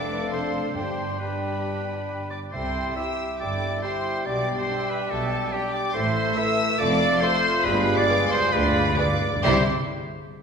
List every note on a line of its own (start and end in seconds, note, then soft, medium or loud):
0.00 0.76 F1 medium
0.00 0.76 F2 medium
0.00 0.75 A3 medium
0.00 0.74 D4 medium
0.00 0.75 D4 medium
0.00 0.75 A4 medium
0.00 0.76 A4 medium
0.00 0.33 B4 medium
0.00 0.32 D5 medium
0.00 0.33 D5 medium
0.00 0.76 F5 medium
0.00 0.32 D6 medium
0.32 0.76 A4 medium
0.32 0.74 C5 medium
0.32 0.75 C5 medium
0.32 0.74 C6 medium
0.75 2.30 G1 medium
0.75 1.38 G2 medium
0.75 2.30 G2 medium
0.75 1.20 G3 medium
0.75 1.19 D4 soft
0.75 1.19 D4 medium
0.75 1.19 G4 soft
0.75 1.19 G4 medium
0.75 2.28 G4 medium
0.75 1.19 C5 medium
0.75 1.18 G5 medium
0.75 1.19 C6 medium
1.19 2.30 G3 medium
1.19 2.29 D4 soft
1.19 2.31 D4 soft
1.19 2.30 D4 medium
1.19 2.31 G4 soft
1.19 2.29 G4 soft
1.19 2.29 B4 medium
1.19 2.31 B4 medium
1.19 2.29 G5 soft
1.19 2.31 B5 medium
2.30 2.40 D5 medium
2.30 2.53 D5 medium
2.30 2.38 D6 medium
2.52 2.90 C2 medium
2.52 2.90 C3 medium
2.52 5.90 G3 medium
2.52 2.94 E4 medium
2.52 4.22 E4 medium
2.52 2.94 G4 medium
2.52 2.94 A4 medium
2.52 2.95 C5 medium
2.52 2.96 C5 medium
2.52 2.94 G5 medium
2.52 2.96 C6 medium
2.96 3.81 E4 medium
2.96 3.05 E4 soft
2.96 3.81 G4 medium
2.96 3.40 G4 medium
2.96 3.06 G4 soft
2.96 3.39 E5 medium
2.96 3.40 E5 medium
2.96 3.81 G5 medium
2.96 3.39 E6 medium
3.39 3.76 G1 medium
3.39 3.76 G2 medium
3.39 3.83 A4 medium
3.39 3.81 D5 medium
3.39 3.82 D5 medium
3.39 3.82 D6 medium
3.81 4.27 E4 medium
3.81 3.91 E4 medium
3.81 4.68 G4 medium
3.81 4.25 G4 medium
3.81 3.91 G4 soft
3.81 4.27 C5 medium
3.81 4.25 C5 medium
3.81 4.24 G5 medium
3.81 4.25 C6 medium
4.25 4.62 B1 medium
4.25 4.62 B2 medium
4.25 5.52 D4 medium
4.25 5.49 G4 medium
4.25 5.91 G4 medium
4.25 4.57 D5 medium
4.25 4.58 D5 medium
4.25 5.49 G5 medium
4.25 4.58 D6 medium
4.57 4.91 C5 medium
4.57 4.89 C5 medium
4.57 4.89 C6 medium
4.69 4.77 D4 medium
4.69 4.77 G4 medium
4.69 5.52 E5 medium
4.88 5.12 B4 medium
4.88 4.99 B4 medium
4.88 5.10 B5 medium
5.10 5.45 B1 medium
5.10 5.45 B2 medium
5.10 5.53 A4 medium
5.10 5.51 A4 medium
5.10 5.51 A5 medium
5.51 5.93 D4 medium
5.51 5.61 D4 medium
5.51 5.72 G4 medium
5.51 5.62 G4 medium
5.51 5.96 G4 medium
5.51 5.61 G4 medium
5.51 5.94 D5 medium
5.51 5.73 G5 loud
5.51 5.93 G5 medium
5.72 5.94 D5 medium
5.72 5.83 D5 medium
5.72 5.94 D6 loud
5.93 6.30 A1 medium
5.93 6.30 A2 medium
5.93 7.61 A3 medium
5.93 6.36 A3 medium
5.93 6.78 E4 medium
5.93 6.37 A4 medium
5.93 6.36 C5 loud
5.93 6.36 C5 medium
5.93 6.37 C5 medium
5.93 6.35 E5 medium
5.93 6.36 C6 loud
6.35 6.78 A3 medium
6.35 6.45 E4 medium
6.35 6.45 A4 medium
6.35 6.79 A4 medium
6.35 6.79 B4 medium
6.35 6.78 E5 medium
6.35 6.77 E5 loud
6.35 6.79 E5 loud
6.35 6.79 E6 loud
6.78 7.15 F1 loud
6.78 7.15 F2 loud
6.78 7.21 A3 medium
6.78 9.17 F4 medium
6.78 7.21 A4 loud
6.78 7.21 A4 medium
6.78 7.22 D5 loud
6.78 7.21 D5 loud
6.78 7.21 F5 medium
6.78 7.21 D6 loud
7.19 7.66 A3 medium
7.19 7.30 F4 medium
7.19 7.66 A4 medium
7.19 7.30 A4 medium
7.19 7.65 C5 loud
7.19 7.64 C5 medium
7.19 7.64 C5 loud
7.19 7.64 F5 medium
7.19 7.62 C6 loud
7.63 8.01 G1 loud
7.63 8.01 G2 loud
7.63 7.71 G2 soft
7.63 8.52 G3 medium
7.63 9.19 G#3 loud
7.63 8.08 G4 medium
7.63 8.52 G#4 loud
7.63 7.98 B4 loud
7.63 7.97 B4 loud
7.63 8.51 F5 medium
7.63 7.96 B5 loud
7.72 7.78 G2 soft
7.88 7.94 G2 soft
7.95 8.02 G2 soft
7.95 8.30 D5 loud
7.95 8.30 D6 loud
8.03 8.09 G2 soft
8.08 8.17 G2 medium
8.08 8.17 F4 medium
8.08 8.17 G#4 medium
8.08 8.52 B4 loud
8.18 8.25 G2 medium
8.26 8.33 G2 medium
8.26 8.52 C6 loud
8.30 8.40 G2 medium
8.30 8.53 C5 loud
8.30 8.54 C5 loud
8.41 8.48 G2 medium
8.49 8.90 D2 loud
8.49 8.90 D2 medium
8.49 8.55 G2 medium
8.49 8.85 G3 medium
8.49 8.96 G#4 medium
8.49 8.98 B4 loud
8.49 8.99 B4 loud
8.49 8.97 D5 loud
8.49 8.97 F5 medium
8.49 8.55 B5 loud
8.56 8.63 G2 medium
8.56 8.67 C6 loud
8.64 8.71 G2 medium
8.64 8.97 B5 loud
8.72 8.79 G2 medium
8.80 8.87 G2 medium
8.88 8.95 G2 medium
8.96 9.04 G2 medium
8.96 9.09 G3 medium
8.96 9.06 F4 medium
8.96 9.08 G#4 medium
8.96 9.06 G#4 medium
8.96 9.21 B4 medium
8.96 9.43 D5 medium
8.96 9.21 F5 medium
8.96 9.44 D6 loud
9.05 9.12 G2 loud
9.13 9.20 G2 loud
9.21 9.28 G2 loud
9.29 9.36 G2 loud
9.37 9.44 G2 loud
9.44 9.70 C2 medium
9.44 9.69 C3 loud
9.44 9.66 C3 loud
9.44 9.63 G3 medium
9.44 9.70 G3 medium
9.44 9.69 C4 medium
9.44 9.63 E4 loud
9.44 9.69 E4 medium
9.44 9.69 G4 medium
9.44 9.63 G4 medium
9.44 9.63 C5 medium
9.44 9.69 E5 medium
9.44 9.69 C6 loud